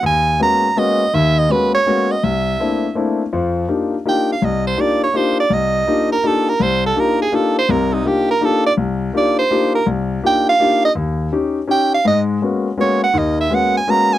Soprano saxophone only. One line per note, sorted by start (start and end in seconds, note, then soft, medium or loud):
0.06 0.39 G#5 loud
0.43 0.80 A#5 loud
0.78 1.15 D#5 medium
1.14 1.40 E5 medium
1.38 1.53 D#5 medium
1.51 1.74 B4 medium
1.74 2.13 C#5 medium
2.11 2.25 D#5 medium
2.24 2.96 E5 medium
4.08 4.29 G5 medium
4.32 4.46 F5 medium
4.45 4.66 D#5 medium
4.67 4.82 C5 medium
4.80 5.03 D5 loud
5.03 5.18 C#5 medium
5.17 5.39 C5 medium
5.40 5.55 D5 medium
5.53 6.12 D#5 medium
6.12 6.28 A#4 medium
6.27 6.50 A4 medium
6.49 6.64 A#4 medium
6.63 6.85 C5 medium
6.86 7.01 A4 medium
7.00 7.21 A#4 medium
7.22 7.36 G#4 medium
7.35 7.57 A4 medium
7.58 7.73 C5 medium
7.71 7.95 A#4 medium
7.93 8.09 D#4 medium
8.07 8.30 G4 medium
8.31 8.46 A#4 medium
8.44 8.66 A4 medium
8.66 8.73 D5 medium
9.17 9.38 D5 medium
9.39 9.72 C5 medium
9.75 9.86 A#4 medium
10.27 10.47 G5 loud
10.49 10.82 F5 loud
10.85 10.92 D#5 loud
11.71 11.92 G5 medium
11.94 12.05 F5 medium
12.07 12.21 D#5 medium
12.81 13.01 C#5 medium
13.04 13.20 F#5 loud
13.18 13.40 D#5 medium
13.40 13.56 E5 medium
13.55 13.77 F#5 medium
13.77 13.92 G#5 loud
13.90 14.15 A#5 loud
14.13 14.18 G#5 loud